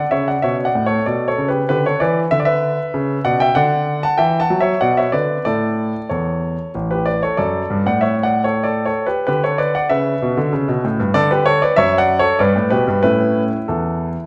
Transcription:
0.00 0.11 D5 medium
0.00 0.11 F#5 medium
0.11 0.34 C#3 medium
0.11 0.26 C#5 medium
0.11 0.27 E5 medium
0.28 0.43 D5 medium
0.28 0.43 F#5 medium
0.42 0.66 B2 medium
0.42 0.63 C#5 medium
0.42 0.55 E5 medium
0.65 0.85 D5 medium
0.65 0.85 F#5 medium
0.75 0.98 A2 medium
0.86 1.06 A4 medium
0.86 1.05 C#5 medium
1.06 1.29 B2 medium
1.06 1.26 A4 medium
1.06 1.27 D5 medium
1.28 1.48 A4 medium
1.28 1.48 C#5 medium
1.38 1.61 C#3 medium
1.48 1.68 G4 medium
1.48 1.67 B4 medium
1.69 1.92 D3 medium
1.69 1.84 G4 medium
1.69 1.85 B4 medium
1.86 2.00 A4 medium
1.86 2.01 C#5 medium
2.00 2.23 E3 medium
2.00 2.30 B4 medium
2.00 2.19 D5 medium
2.31 2.77 D3 medium
2.31 2.38 E5 medium
2.40 2.46 D5 medium
2.45 3.22 B4 medium
2.45 3.21 E5 medium
2.94 3.16 C#3 medium
3.25 3.48 B2 medium
3.25 3.40 D5 medium
3.25 3.40 F#5 medium
3.40 3.56 E5 medium
3.40 3.56 G5 medium
3.55 4.01 D3 medium
3.55 4.00 D5 medium
3.55 4.02 F#5 medium
4.03 4.18 F#5 medium
4.03 4.19 A5 medium
4.18 4.41 E3 medium
4.18 4.38 E5 medium
4.18 4.39 G5 medium
4.40 4.60 F#5 medium
4.40 4.58 A5 medium
4.50 4.73 F#3 medium
4.60 4.81 C#5 medium
4.60 4.79 E5 medium
4.81 5.05 B2 medium
4.81 4.97 D5 medium
4.81 4.97 F#5 medium
4.97 5.13 C#5 medium
4.97 5.13 E5 medium
5.12 5.37 D3 medium
5.12 5.43 B4 medium
5.12 5.44 D5 medium
5.45 5.91 A2 medium
5.45 5.97 E4 soft
5.45 6.06 A4 medium
5.45 6.10 D5 medium
6.09 6.55 E2 medium
6.09 6.70 A4 soft
6.09 6.73 C#5 medium
6.75 7.19 A1 medium
6.91 7.06 G4 medium
6.91 7.05 B4 medium
7.06 7.21 B4 medium
7.06 7.22 D5 medium
7.23 7.37 A4 medium
7.23 7.38 C#5 medium
7.37 7.61 F#2 medium
7.37 7.82 A4 medium
7.37 7.85 D5 medium
7.70 7.85 G2 medium
7.86 8.88 A2 medium
7.86 8.01 D5 medium
7.86 8.02 F#5 medium
8.01 8.21 C#5 medium
8.01 8.14 E5 medium
8.23 8.43 D5 medium
8.23 8.42 F#5 medium
8.44 8.63 A4 medium
8.44 8.65 C#5 medium
8.64 8.84 A4 medium
8.64 8.85 D5 medium
8.86 9.06 A4 medium
8.86 9.06 C#5 medium
9.07 9.27 G4 medium
9.07 9.25 B4 medium
9.27 9.73 D3 medium
9.27 9.42 G4 medium
9.27 9.43 B4 medium
9.44 9.59 A4 medium
9.44 9.59 C#5 medium
9.58 9.74 B4 medium
9.58 9.74 D5 medium
9.75 9.90 D5 medium
9.75 9.90 F#5 medium
9.89 10.13 C#3 medium
9.89 10.80 B4 medium
9.89 10.84 E5 medium
10.22 10.37 B2 medium
10.37 10.52 D3 medium
10.53 10.68 C#3 medium
10.68 10.83 B2 medium
10.84 10.99 A2 medium
11.00 11.14 G2 medium
11.14 11.60 D3 medium
11.14 11.30 A4 medium
11.14 11.30 D5 loud
11.31 11.46 G4 medium
11.31 11.46 B4 medium
11.46 11.61 A4 medium
11.46 11.62 C#5 loud
11.62 11.77 B4 medium
11.62 11.78 D5 medium
11.76 12.23 F#2 medium
11.76 11.97 C#5 medium
11.76 11.98 E5 loud
11.98 12.18 D5 medium
11.98 12.19 F#5 loud
12.19 12.39 A4 medium
12.19 12.40 C#5 loud
12.39 12.55 G2 medium
12.39 12.69 B4 medium
12.39 12.68 D5 medium
12.56 12.71 A2 medium
12.70 12.87 B2 medium
12.70 13.02 G4 medium
12.70 13.01 B4 medium
12.87 13.03 G2 medium
13.03 13.49 A2 medium
13.03 13.56 A3 soft
13.03 13.56 C#4 soft
13.03 13.65 E4 medium
13.03 13.42 B4 medium
13.68 14.14 E2 medium
13.68 14.26 E4 soft
13.68 14.07 A4 medium

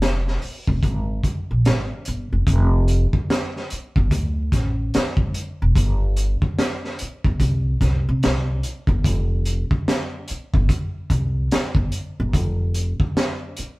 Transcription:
0.00 0.38 F1 medium
0.00 snare loud
0.00 closed hi-hat medium
0.28 snare soft
0.42 muted upright bass stroke soft
0.42 open hi-hat soft
0.67 0.82 F1 medium
0.67 kick medium
0.83 1.19 G#1 medium
0.83 kick medium
0.83 closed hi-hat medium
1.24 muted upright bass stroke soft
1.24 kick medium
1.24 closed hi-hat medium
1.51 1.64 A#1 medium
1.65 1.88 G#1 medium
1.65 snare loud
1.65 closed hi-hat medium
2.05 2.29 G1 medium
2.05 closed hi-hat medium
2.33 2.46 F1 medium
2.47 3.05 F1 medium
2.47 kick loud
2.47 closed hi-hat medium
2.88 closed hi-hat medium
3.13 muted upright bass stroke soft
3.13 kick medium
3.30 snare loud
3.30 closed hi-hat medium
3.56 snare soft
3.70 muted upright bass stroke soft
3.70 closed hi-hat medium
3.96 4.11 G1 medium
3.96 kick medium
4.11 4.48 D2 medium
4.11 kick medium
4.11 closed hi-hat medium
4.52 4.89 A1 medium
4.52 kick medium
4.52 snare soft
4.52 closed hi-hat medium
4.94 muted upright bass stroke soft
4.94 snare loud
4.94 closed hi-hat medium
5.17 5.32 G#1 medium
5.17 kick medium
5.34 closed hi-hat medium
5.62 5.75 E1 medium
5.76 6.34 G1 medium
5.76 kick medium
5.76 closed hi-hat medium
6.17 closed hi-hat medium
6.42 muted upright bass stroke soft
6.42 kick medium
6.59 snare loud
6.59 closed hi-hat medium
6.85 snare soft
6.99 muted upright bass stroke soft
6.99 closed hi-hat medium
7.24 7.39 G1 medium
7.24 kick medium
7.40 7.76 C2 medium
7.40 kick medium
7.40 closed hi-hat medium
7.81 8.03 C2 medium
7.81 kick medium
7.81 snare soft
7.81 closed hi-hat medium
8.09 8.22 C3 medium
8.23 8.60 C2 medium
8.23 snare loud
8.23 closed hi-hat medium
8.63 closed hi-hat medium
8.87 9.06 G1 medium
8.87 kick medium
9.04 9.63 F1 medium
9.04 kick loud
9.04 closed hi-hat medium
9.46 closed hi-hat medium
9.71 muted upright bass stroke soft
9.71 kick medium
9.88 snare loud
9.88 closed hi-hat medium
10.28 muted upright bass stroke soft
10.28 closed hi-hat medium
10.54 10.68 G1 medium
10.54 kick medium
10.69 kick medium
10.69 closed hi-hat medium
11.10 11.47 C2 medium
11.10 kick medium
11.10 closed hi-hat medium
11.51 snare loud
11.51 closed hi-hat medium
11.75 11.90 G1 medium
11.75 kick medium
11.92 closed hi-hat medium
12.20 12.35 G1 medium
12.33 12.92 F1 medium
12.33 kick medium
12.33 closed hi-hat medium
12.74 closed hi-hat medium
13.00 muted upright bass stroke soft
13.00 kick medium
13.17 snare loud
13.17 closed hi-hat medium
13.57 muted upright bass stroke soft
13.57 closed hi-hat medium

